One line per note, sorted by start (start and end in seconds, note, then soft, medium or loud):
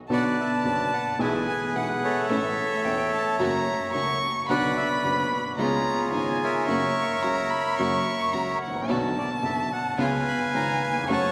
0.09 0.33 B1 medium
0.09 0.33 B2 medium
0.09 0.33 D3 medium
0.09 0.33 F#3 medium
0.09 0.33 B3 medium
0.09 0.33 D4 medium
0.09 0.33 F#4 medium
0.09 1.17 B4 medium
0.09 0.64 D5 medium
0.09 0.24 F#5 loud
0.09 1.22 A5 loud
0.40 0.52 E5 medium
0.64 0.88 F#1 medium
0.64 0.88 F#2 medium
0.64 0.87 D3 soft
0.64 0.87 F#3 soft
0.64 0.88 B3 soft
0.64 0.88 B3 medium
0.64 0.88 D4 medium
0.64 0.88 F#4 medium
0.64 0.93 D5 medium
0.93 1.19 F#5 medium
1.19 1.43 B1 medium
1.19 1.43 B2 medium
1.19 1.43 E3 medium
1.19 1.42 G#3 medium
1.19 1.43 G#3 medium
1.19 1.43 B3 medium
1.19 1.43 E4 medium
1.19 1.43 G#4 medium
1.19 2.26 G#4 medium
1.19 2.26 B4 medium
1.19 1.34 E5 medium
1.19 1.77 G#5 medium
1.48 1.60 G#5 loud
1.75 1.98 B1 medium
1.75 1.98 B2 medium
1.75 1.98 E3 soft
1.75 1.98 G#3 soft
1.75 1.98 B3 medium
1.75 1.98 B3 soft
1.75 1.98 E4 medium
1.75 1.98 G#4 medium
1.75 2.30 F#5 medium
1.75 1.89 F#5 medium
2.04 3.36 A4 medium
2.04 4.18 C#5 medium
2.04 4.19 E5 loud
2.29 2.53 A1 medium
2.29 2.53 A2 medium
2.29 2.53 E3 medium
2.29 2.52 A3 medium
2.29 2.53 A3 medium
2.29 2.53 C#4 medium
2.29 2.53 E4 medium
2.29 2.53 A4 medium
2.29 2.86 E5 loud
2.84 3.08 E1 medium
2.84 3.08 E2 medium
2.84 3.08 E3 soft
2.84 3.07 A3 medium
2.84 3.08 A3 soft
2.84 3.07 C#4 soft
2.84 3.08 C#4 soft
2.84 3.07 E4 medium
2.84 3.08 A4 medium
2.84 3.12 G5 loud
3.13 3.38 A5 medium
3.39 3.62 F#2 medium
3.39 3.62 C#3 medium
3.39 3.62 F#3 medium
3.39 3.62 A#3 medium
3.39 3.63 A#3 medium
3.39 3.62 C#4 medium
3.39 3.62 F#4 medium
3.39 3.63 F#4 medium
3.39 3.91 A#5 loud
3.94 4.17 C#2 medium
3.94 4.17 C#3 medium
3.94 4.17 F#3 soft
3.94 4.17 A#3 medium
3.94 4.17 A#3 soft
3.94 4.17 C#4 medium
3.94 4.17 F#4 medium
3.94 4.18 F#4 medium
3.94 4.45 C#6 loud
4.49 4.72 B1 medium
4.49 4.72 B2 medium
4.49 4.72 D3 medium
4.49 4.72 F#3 medium
4.49 4.72 B3 medium
4.49 4.72 D4 medium
4.49 4.72 F#4 loud
4.49 4.72 F#4 medium
4.49 5.31 B4 medium
4.49 5.04 D5 medium
4.49 4.75 F#5 loud
4.49 5.54 B5 loud
4.77 4.89 E5 loud
5.03 5.27 F#1 medium
5.03 5.27 F#2 medium
5.03 5.27 D3 soft
5.03 5.27 F#3 soft
5.03 5.26 B3 medium
5.03 5.26 B3 soft
5.03 5.26 D4 medium
5.03 5.26 F#4 medium
5.03 5.27 F#4 medium
5.03 5.17 D5 loud
5.33 5.45 B4 medium
5.57 5.81 C#2 medium
5.57 5.81 C#3 medium
5.57 5.81 G#3 medium
5.57 5.81 B3 medium
5.57 5.81 C#4 medium
5.57 5.81 F4 medium
5.57 5.82 F4 medium
5.57 6.09 A#5 loud
5.62 6.66 F4 medium
5.62 6.66 G#4 medium
5.62 6.38 C#5 medium
6.11 6.35 G#1 medium
6.11 6.36 G#2 medium
6.11 6.35 C#3 soft
6.11 6.36 G#3 soft
6.11 6.36 B3 soft
6.11 6.36 B3 medium
6.11 6.36 C#4 medium
6.11 6.36 F4 medium
6.11 6.64 G#5 loud
6.44 8.58 A#4 medium
6.44 8.59 C#5 medium
6.44 8.59 E5 loud
6.66 6.91 F#2 medium
6.66 6.91 C#3 medium
6.66 6.91 F#3 medium
6.66 6.91 A#3 medium
6.66 6.91 C#4 medium
6.66 6.91 F#4 medium
6.66 7.24 C#6 loud
7.22 7.46 C#2 medium
7.22 7.46 C#3 medium
7.22 7.46 F#3 soft
7.22 7.46 A#3 medium
7.22 7.47 A#3 soft
7.22 7.46 C#4 medium
7.22 7.46 F#4 medium
7.22 7.47 F#4 medium
7.22 7.51 A#5 medium
7.50 7.78 B5 loud
7.78 8.02 F#2 medium
7.78 8.02 C#3 medium
7.78 8.02 F#3 medium
7.78 8.01 A#3 medium
7.78 8.02 A#3 medium
7.78 8.01 C#4 medium
7.78 8.01 F#4 medium
7.78 8.02 F#4 medium
7.78 8.35 C#6 loud
8.33 8.57 C#2 medium
8.33 8.56 C#3 medium
8.33 8.56 F#3 soft
8.33 8.56 A#3 soft
8.33 8.57 A#3 medium
8.33 8.57 C#4 medium
8.33 8.57 F#4 medium
8.33 8.57 F#4 soft
8.33 8.61 A#5 medium
8.61 8.90 F#5 medium
8.67 8.74 G#1 medium
8.75 8.82 A1 medium
8.82 8.89 A#1 medium
8.88 9.12 B1 medium
8.88 9.12 B2 medium
8.88 9.12 D3 medium
8.88 9.12 F#3 medium
8.88 9.11 B3 medium
8.88 9.12 B3 medium
8.88 9.11 D4 medium
8.88 9.12 F#4 loud
8.88 9.12 F#4 medium
8.88 9.98 A5 loud
9.18 9.30 D5 medium
9.43 9.66 F#1 medium
9.43 9.66 F#2 medium
9.43 9.66 D3 medium
9.43 9.66 F#3 soft
9.43 9.66 B3 medium
9.43 9.66 B3 soft
9.43 9.67 D4 soft
9.43 9.67 F#4 medium
9.43 9.70 E5 medium
9.73 10.00 F#5 loud
9.98 10.22 C#2 medium
9.98 10.22 C#3 medium
9.98 10.22 G#3 medium
9.98 10.21 B3 medium
9.98 10.22 B3 medium
9.98 10.21 C#4 medium
9.98 10.21 F4 medium
9.98 10.22 F4 medium
9.98 11.05 B4 medium
9.98 11.05 F5 medium
9.98 11.09 G#5 loud
9.98 10.12 G#5 loud
10.28 10.40 B5 loud
10.53 10.77 G#1 medium
10.53 10.77 G#2 medium
10.53 10.77 C#3 soft
10.53 10.77 G#3 soft
10.53 10.76 B3 medium
10.53 10.77 B3 soft
10.53 10.76 C#4 medium
10.53 10.76 F4 medium
10.53 10.77 F4 soft
10.53 10.83 A#5 loud
10.83 11.08 G#5 loud
10.89 10.95 D#2 medium
10.96 11.02 E2 medium
11.03 11.09 F2 medium
11.07 11.32 F#2 medium
11.07 11.32 C#3 medium
11.07 11.32 F#3 medium
11.07 11.31 A3 medium
11.07 11.32 A3 medium
11.07 11.31 C#4 medium
11.07 11.31 F#4 medium
11.07 11.32 F#4 medium
11.07 11.32 C#6 loud
11.12 11.32 C#5 medium
11.12 11.32 F#5 medium
11.12 11.32 A5 loud